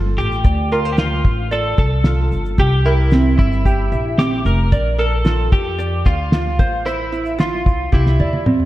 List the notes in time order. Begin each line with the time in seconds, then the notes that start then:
Already playing: G1 F4 A4 C5
0.17 A1 G4, shaker
0.32 shaker
0.44 D2 D5, kick, shaker
0.72 F4 A#4, shaker
0.85 C5
0.93 G4
0.97 F4, snare, shaker
1.25 A1, kick, shaker
1.51 A4 D5, shaker
1.78 C2 A4, kick, shaker
2.04 F4, snare, shaker
2.32 G1, shaker
2.45 shaker
2.58 C2 G4, kick, shaker
2.85 E4 A#4, shaker
3.11 C4, snare, shaker
3.39 G1 E4, kick, shaker
3.52 shaker
3.65 G4, kick, shaker
3.92 A#1 E5, shaker
4.18 C4 G4, snare, shaker
4.45 F1 A#4, shaker
4.72 A#1 D5, kick, shaker
4.98 A4 A#4, shaker
5.25 F4, snare, shaker
5.52 F2 G4, kick, shaker
5.79 D5, shaker
6.06 D2 F4 F5, kick, shaker
6.32 F4, snare, shaker
6.59 A1 C5, kick, shaker
6.86 E4 C5, shaker
7.12 E4, shaker
7.25 shaker
7.39 F4, snare, shaker
7.66 C2, kick, shaker
7.92 C2 E4 G4, kick, snare
8.06 snare
8.20 E2 D5, high tom
8.33 high tom
8.46 C4, mid tom
8.60 mid tom